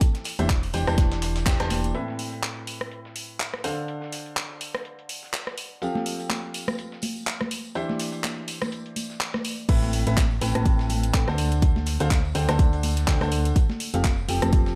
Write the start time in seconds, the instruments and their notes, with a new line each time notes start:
0.01 kick, closed hi-hat, tambourine
0.15 snare, closed hi-hat
0.24 snare, closed hi-hat, open hi-hat, tambourine
0.39 fm bass E1, grand piano E3 D4 G4 C5 E5, closed hi-hat, tambourine, high conga
0.49 kick, snare, clap, closed hi-hat
0.63 open hi-hat
0.73 fm bass E1, grand piano E3 D4 G4 C5 G5, closed hi-hat, open hi-hat, tambourine
0.87 fm bass E1, grand piano E3 D4 G4 C5 A5, cross-stick, snare, tambourine
0.98 kick, snare, closed hi-hat, tambourine, high conga
1.12 snare, closed hi-hat
1.22 snare, closed hi-hat, open hi-hat, tambourine
1.35 snare, closed hi-hat, tambourine
1.46 fm bass E1, grand piano E3 D4 G4 C5 G5, kick, snare, clap, closed hi-hat, tambourine
1.60 fm bass E1, grand piano E3 D4 G4 C5 A5, cross-stick, snare, closed hi-hat
1.70 snare, closed hi-hat, open hi-hat, tambourine, high conga
1.84 closed hi-hat, tambourine
1.95 grand piano A2 C4 A4 B4 E5, closed hi-hat
2.08 snare
2.19 closed hi-hat, open hi-hat
2.33 closed hi-hat
2.43 clap, closed hi-hat
2.67 closed hi-hat, open hi-hat
2.81 cross-stick
2.91 closed hi-hat
3.05 snare
3.16 closed hi-hat, open hi-hat
3.40 clap, closed hi-hat
3.54 cross-stick, snare
3.64 grand piano D3 D4 A4 C5 F5, closed hi-hat, open hi-hat
3.88 closed hi-hat
4.02 snare
4.12 snare, closed hi-hat, open hi-hat
4.26 closed hi-hat
4.37 clap, closed hi-hat
4.61 closed hi-hat, open hi-hat
4.75 cross-stick, snare
4.85 closed hi-hat
4.99 closed hi-hat
5.09 closed hi-hat, open hi-hat
5.23 snare
5.33 clap, open hi-hat
5.47 cross-stick, snare
5.58 closed hi-hat, open hi-hat
5.82 grand piano F3 C4 G4 A4 F5, closed hi-hat, tambourine
5.95 snare, high conga
6.06 closed hi-hat, open hi-hat, tambourine
6.19 closed hi-hat, tambourine
6.30 clap, closed hi-hat, tambourine, high conga
6.54 closed hi-hat, open hi-hat, tambourine
6.68 cross-stick, tambourine, high conga
6.78 closed hi-hat, tambourine
6.92 snare
7.02 closed hi-hat, open hi-hat, tambourine, high conga
7.16 tambourine
7.27 clap, closed hi-hat
7.41 cross-stick, snare, high conga
7.51 closed hi-hat, open hi-hat, tambourine
7.64 tambourine
7.75 grand piano E3 D4 G4 C5 E5, closed hi-hat, tambourine
7.89 snare, high conga
7.99 snare, closed hi-hat, open hi-hat, tambourine
8.13 closed hi-hat, tambourine
8.24 clap, closed hi-hat, tambourine, high conga
8.48 closed hi-hat, open hi-hat, tambourine
8.62 cross-stick, snare, tambourine, high conga
8.72 closed hi-hat, tambourine
8.86 closed hi-hat
8.96 closed hi-hat, open hi-hat, tambourine, high conga
9.10 snare, tambourine
9.20 clap, open hi-hat, tambourine
9.34 cross-stick, snare, high conga
9.44 closed hi-hat, open hi-hat, tambourine
9.58 tambourine
9.68 fm bass A1, grand piano A2 C4 A4 B4 E5, kick, closed hi-hat, tambourine, crash
9.83 snare, high conga
9.93 closed hi-hat, open hi-hat, tambourine
10.07 fm bass A1, grand piano A2 C4 A4 B4 E5, closed hi-hat, tambourine
10.17 kick, snare, clap, closed hi-hat, tambourine, high conga
10.31 tambourine
10.41 fm bass A1, grand piano A2 C4 A4 B4 G5, closed hi-hat, open hi-hat, tambourine
10.55 fm bass A1, grand piano A2 C4 A4 B4 A5, cross-stick, closed hi-hat, tambourine, high conga
10.65 kick, closed hi-hat, tambourine
10.79 snare, tambourine
10.89 closed hi-hat, open hi-hat, tambourine, high conga
11.03 closed hi-hat, tambourine
11.14 fm bass A2, grand piano D3 C4 A4 B4 G5, kick, snare, clap, closed hi-hat
11.28 fm bass D2, grand piano D3 D4 A4 C5 A5, cross-stick, snare, tambourine, high conga
11.38 closed hi-hat, open hi-hat, tambourine
11.52 closed hi-hat, tambourine
11.62 kick, closed hi-hat, tambourine
11.76 snare, high conga
11.86 snare, closed hi-hat, open hi-hat, tambourine
12.00 fm bass D2, grand piano D3 D4 A4 C5 F5, closed hi-hat, tambourine
12.11 kick, snare, clap, closed hi-hat, tambourine, high conga
12.25 tambourine
12.35 fm bass D2, grand piano D3 D4 A4 C5 G5, closed hi-hat, open hi-hat, tambourine
12.48 fm bass D2, grand piano D3 D4 A4 C5 A5, cross-stick, snare, closed hi-hat, tambourine, high conga
12.59 kick, closed hi-hat, tambourine
12.73 closed hi-hat, tambourine
12.83 closed hi-hat, open hi-hat, tambourine, high conga
12.97 snare, closed hi-hat, tambourine
13.07 fm bass D2, grand piano D3 D4 A4 C5 G5, kick, snare, clap, closed hi-hat, open hi-hat, tambourine
13.21 fm bass D2, grand piano D3 D4 A4 C5 A5, cross-stick, snare, tambourine, high conga
13.31 closed hi-hat, open hi-hat, tambourine
13.45 closed hi-hat, tambourine
13.56 kick, closed hi-hat, tambourine
13.69 snare, high conga
13.80 closed hi-hat, open hi-hat, tambourine
13.94 fm bass F1, grand piano F3 C4 G4 A4 F5, closed hi-hat, tambourine
14.04 kick, snare, clap, closed hi-hat, tambourine, high conga
14.18 tambourine
14.28 fm bass F1, grand piano F3 C4 G4 A4 G5, closed hi-hat, open hi-hat, tambourine
14.42 fm bass F1, grand piano F3 C4 G4 A4 A5, cross-stick, closed hi-hat, tambourine, high conga
14.53 kick, closed hi-hat, tambourine
14.66 snare, tambourine